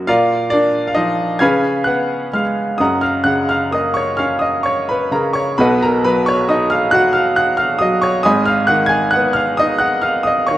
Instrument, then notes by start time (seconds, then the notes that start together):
grand piano
0.07 A#2 F4 A#4 D5 F5
0.50 A#3 D4 D5
0.88 F5
0.95 F3 D#4 D#5
1.39 C#3 C#4 G#4 B4 F5 G#5 B5 F6 G#6
1.84 B3 F#5 F#6
2.33 G#3 F5 F6
2.78 F#1 F#2 D#5 F#5 A#5 D#6
3.01 F5 F6
3.24 C#3 F#5 F#6
3.49 F5 F6
3.71 A#3 D#5 D#6
3.94 C#5 C#6
4.17 C#4 F5 F6
4.39 D#5 D#6
4.63 C#5 C#6
4.89 B4 B5
5.11 C#3 A#4 A#5
5.33 C#5 C#6
5.58 B1 B2 B4 D#5 F#5 B5
5.83 A#4 A#5
6.04 F#3 B4 B5
6.26 C#5 C#6
6.49 D#4 D#5 D#6
6.70 F5 F6
6.91 F#4 F#5 F#6
7.13 F5 F6
7.36 F#5 F#6
7.57 F5 F6
7.79 F#3 D#5 D#6
8.02 C#5 C#6
8.23 G#1 G#2 D#5 G#5 B5 D#6
8.46 F5 F6
8.67 D#3 F#5 F#6
8.86 G#5 G#6
9.11 F#5 F#6
9.16 B3
9.33 F5 F6
9.57 D#4 D#5 D#6
9.78 F#5 F#6
10.02 F5 F6
10.23 D#5 D#6
10.47 C#5 C#6
10.51 D#3